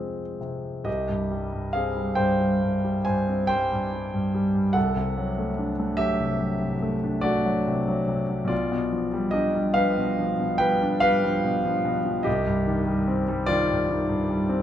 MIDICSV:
0, 0, Header, 1, 2, 480
1, 0, Start_track
1, 0, Tempo, 958466
1, 434, Time_signature, 9, 3, 24, 8
1, 434, Tempo, 870827
1, 2354, Tempo, 835655
1, 6194, Tempo, 817439
1, 8301, End_track
2, 0, Start_track
2, 0, Title_t, "Grand piano"
2, 0, Program_c, 0, 0
2, 0, Control_c, 0, 64, 127
2, 0, Note_on_c, 0, 41, 37
2, 0, Note_on_c, 0, 48, 35
2, 0, Note_on_c, 0, 53, 36
2, 0, Note_on_c, 0, 56, 32
2, 0, Note_on_c, 0, 60, 35
2, 0, Note_on_c, 0, 77, 46
2, 101, Note_off_c, 0, 53, 0
2, 182, Note_off_c, 0, 56, 0
2, 182, Note_off_c, 0, 60, 0
2, 192, Note_off_c, 0, 77, 0
2, 204, Note_off_c, 0, 48, 0
2, 204, Note_on_c, 0, 48, 35
2, 401, Note_off_c, 0, 41, 0
2, 422, Note_on_c, 0, 36, 53
2, 424, Note_on_c, 0, 75, 71
2, 429, Note_on_c, 0, 67, 54
2, 436, Note_off_c, 0, 48, 0
2, 443, Control_c, 0, 64, 0
2, 538, Control_c, 0, 64, 127
2, 557, Note_on_c, 0, 43, 45
2, 681, Note_on_c, 0, 55, 48
2, 749, Note_off_c, 0, 43, 0
2, 800, Note_on_c, 0, 43, 44
2, 871, Note_off_c, 0, 55, 0
2, 891, Note_off_c, 0, 67, 0
2, 909, Note_on_c, 0, 77, 78
2, 911, Note_off_c, 0, 75, 0
2, 917, Note_on_c, 0, 68, 56
2, 923, Note_on_c, 0, 60, 40
2, 990, Note_off_c, 0, 43, 0
2, 1040, Note_on_c, 0, 55, 45
2, 1111, Note_off_c, 0, 60, 0
2, 1140, Note_off_c, 0, 68, 0
2, 1144, Note_on_c, 0, 79, 78
2, 1149, Note_on_c, 0, 72, 70
2, 1153, Note_off_c, 0, 77, 0
2, 1155, Note_on_c, 0, 43, 54
2, 1230, Note_off_c, 0, 55, 0
2, 1280, Note_on_c, 0, 55, 38
2, 1348, Note_off_c, 0, 43, 0
2, 1404, Note_on_c, 0, 43, 48
2, 1471, Note_off_c, 0, 55, 0
2, 1525, Note_on_c, 0, 55, 46
2, 1594, Note_off_c, 0, 43, 0
2, 1613, Note_off_c, 0, 72, 0
2, 1632, Note_off_c, 0, 79, 0
2, 1636, Note_on_c, 0, 80, 82
2, 1641, Note_on_c, 0, 72, 58
2, 1648, Note_on_c, 0, 43, 48
2, 1715, Note_off_c, 0, 55, 0
2, 1767, Note_on_c, 0, 60, 46
2, 1837, Note_off_c, 0, 43, 0
2, 1865, Note_off_c, 0, 72, 0
2, 1871, Note_on_c, 0, 79, 93
2, 1879, Note_off_c, 0, 80, 0
2, 1879, Note_on_c, 0, 72, 75
2, 1888, Note_on_c, 0, 55, 54
2, 1957, Note_off_c, 0, 60, 0
2, 2007, Note_on_c, 0, 43, 54
2, 2076, Note_off_c, 0, 55, 0
2, 2122, Note_on_c, 0, 55, 44
2, 2194, Note_off_c, 0, 43, 0
2, 2237, Note_on_c, 0, 43, 55
2, 2308, Note_off_c, 0, 55, 0
2, 2351, Note_on_c, 0, 55, 54
2, 2423, Note_off_c, 0, 43, 0
2, 2467, Note_on_c, 0, 43, 47
2, 2540, Note_off_c, 0, 55, 0
2, 2558, Note_off_c, 0, 36, 0
2, 2564, Note_off_c, 0, 72, 0
2, 2572, Note_on_c, 0, 78, 83
2, 2577, Note_on_c, 0, 69, 66
2, 2582, Note_off_c, 0, 79, 0
2, 2586, Note_off_c, 0, 43, 0
2, 2587, Note_on_c, 0, 36, 58
2, 2597, Control_c, 0, 64, 0
2, 2684, Control_c, 0, 64, 127
2, 2705, Note_on_c, 0, 48, 49
2, 2828, Note_on_c, 0, 54, 49
2, 2897, Note_off_c, 0, 48, 0
2, 2947, Note_on_c, 0, 57, 46
2, 3018, Note_off_c, 0, 54, 0
2, 3062, Note_on_c, 0, 62, 49
2, 3138, Note_off_c, 0, 57, 0
2, 3184, Note_on_c, 0, 57, 52
2, 3255, Note_off_c, 0, 62, 0
2, 3275, Note_off_c, 0, 69, 0
2, 3283, Note_on_c, 0, 76, 98
2, 3290, Note_on_c, 0, 67, 66
2, 3295, Note_off_c, 0, 78, 0
2, 3301, Note_on_c, 0, 54, 51
2, 3373, Note_off_c, 0, 57, 0
2, 3418, Note_on_c, 0, 48, 42
2, 3491, Note_off_c, 0, 54, 0
2, 3535, Note_on_c, 0, 54, 45
2, 3610, Note_off_c, 0, 48, 0
2, 3655, Note_on_c, 0, 48, 41
2, 3729, Note_off_c, 0, 54, 0
2, 3775, Note_on_c, 0, 57, 52
2, 3850, Note_off_c, 0, 48, 0
2, 3897, Note_on_c, 0, 62, 49
2, 3971, Note_off_c, 0, 57, 0
2, 3992, Note_off_c, 0, 67, 0
2, 3999, Note_on_c, 0, 74, 88
2, 4007, Note_on_c, 0, 66, 68
2, 4012, Note_off_c, 0, 76, 0
2, 4016, Note_on_c, 0, 57, 61
2, 4092, Note_off_c, 0, 62, 0
2, 4138, Note_on_c, 0, 54, 57
2, 4213, Note_off_c, 0, 57, 0
2, 4263, Note_on_c, 0, 48, 50
2, 4334, Note_off_c, 0, 54, 0
2, 4380, Note_on_c, 0, 54, 59
2, 4457, Note_off_c, 0, 48, 0
2, 4497, Note_on_c, 0, 48, 51
2, 4575, Note_off_c, 0, 54, 0
2, 4619, Note_on_c, 0, 54, 47
2, 4693, Note_off_c, 0, 48, 0
2, 4707, Note_on_c, 0, 35, 61
2, 4715, Note_off_c, 0, 66, 0
2, 4715, Note_off_c, 0, 74, 0
2, 4721, Note_off_c, 0, 36, 0
2, 4724, Note_on_c, 0, 74, 71
2, 4733, Note_on_c, 0, 65, 63
2, 4742, Note_off_c, 0, 54, 0
2, 4754, Control_c, 0, 64, 0
2, 4858, Control_c, 0, 64, 127
2, 4861, Note_on_c, 0, 47, 60
2, 4980, Note_on_c, 0, 53, 53
2, 5055, Note_off_c, 0, 47, 0
2, 5100, Note_on_c, 0, 55, 58
2, 5175, Note_off_c, 0, 53, 0
2, 5197, Note_off_c, 0, 65, 0
2, 5202, Note_on_c, 0, 75, 92
2, 5209, Note_on_c, 0, 67, 55
2, 5215, Note_off_c, 0, 74, 0
2, 5217, Note_on_c, 0, 62, 55
2, 5296, Note_off_c, 0, 55, 0
2, 5341, Note_on_c, 0, 55, 54
2, 5415, Note_off_c, 0, 62, 0
2, 5442, Note_off_c, 0, 67, 0
2, 5449, Note_on_c, 0, 77, 98
2, 5453, Note_on_c, 0, 71, 66
2, 5456, Note_off_c, 0, 75, 0
2, 5461, Note_on_c, 0, 53, 62
2, 5536, Note_off_c, 0, 55, 0
2, 5586, Note_on_c, 0, 47, 47
2, 5656, Note_off_c, 0, 53, 0
2, 5708, Note_on_c, 0, 53, 63
2, 5778, Note_off_c, 0, 47, 0
2, 5825, Note_on_c, 0, 47, 51
2, 5901, Note_off_c, 0, 53, 0
2, 5918, Note_off_c, 0, 71, 0
2, 5933, Note_on_c, 0, 79, 94
2, 5938, Note_on_c, 0, 71, 72
2, 5939, Note_off_c, 0, 77, 0
2, 5948, Note_on_c, 0, 55, 59
2, 6020, Note_off_c, 0, 47, 0
2, 6071, Note_on_c, 0, 62, 60
2, 6142, Note_off_c, 0, 55, 0
2, 6168, Note_off_c, 0, 71, 0
2, 6176, Note_on_c, 0, 77, 110
2, 6182, Note_on_c, 0, 71, 88
2, 6183, Note_off_c, 0, 79, 0
2, 6187, Note_on_c, 0, 55, 63
2, 6265, Note_off_c, 0, 62, 0
2, 6317, Note_on_c, 0, 53, 57
2, 6385, Note_off_c, 0, 55, 0
2, 6432, Note_on_c, 0, 47, 51
2, 6510, Note_off_c, 0, 53, 0
2, 6557, Note_on_c, 0, 53, 65
2, 6627, Note_off_c, 0, 47, 0
2, 6671, Note_on_c, 0, 47, 61
2, 6749, Note_off_c, 0, 53, 0
2, 6791, Note_on_c, 0, 53, 56
2, 6865, Note_off_c, 0, 47, 0
2, 6872, Note_off_c, 0, 35, 0
2, 6887, Note_off_c, 0, 71, 0
2, 6896, Note_on_c, 0, 75, 81
2, 6903, Note_on_c, 0, 67, 79
2, 6908, Note_off_c, 0, 77, 0
2, 6913, Note_off_c, 0, 53, 0
2, 6914, Note_on_c, 0, 36, 71
2, 6924, Control_c, 0, 64, 0
2, 7005, Control_c, 0, 64, 127
2, 7033, Note_on_c, 0, 43, 65
2, 7151, Note_on_c, 0, 51, 63
2, 7226, Note_off_c, 0, 43, 0
2, 7272, Note_on_c, 0, 55, 58
2, 7347, Note_off_c, 0, 51, 0
2, 7392, Note_on_c, 0, 60, 58
2, 7469, Note_off_c, 0, 55, 0
2, 7514, Note_on_c, 0, 55, 67
2, 7590, Note_off_c, 0, 60, 0
2, 7611, Note_off_c, 0, 67, 0
2, 7621, Note_on_c, 0, 74, 108
2, 7627, Note_on_c, 0, 65, 77
2, 7631, Note_off_c, 0, 75, 0
2, 7637, Note_on_c, 0, 51, 72
2, 7710, Note_off_c, 0, 55, 0
2, 7757, Note_on_c, 0, 43, 46
2, 7829, Note_off_c, 0, 51, 0
2, 7870, Note_on_c, 0, 51, 60
2, 7947, Note_off_c, 0, 43, 0
2, 7990, Note_on_c, 0, 43, 57
2, 8062, Note_off_c, 0, 51, 0
2, 8109, Note_on_c, 0, 55, 62
2, 8181, Note_off_c, 0, 43, 0
2, 8223, Note_on_c, 0, 60, 61
2, 8301, Note_off_c, 0, 36, 0
2, 8301, Note_off_c, 0, 55, 0
2, 8301, Note_off_c, 0, 60, 0
2, 8301, Note_off_c, 0, 65, 0
2, 8301, Note_off_c, 0, 74, 0
2, 8301, End_track
0, 0, End_of_file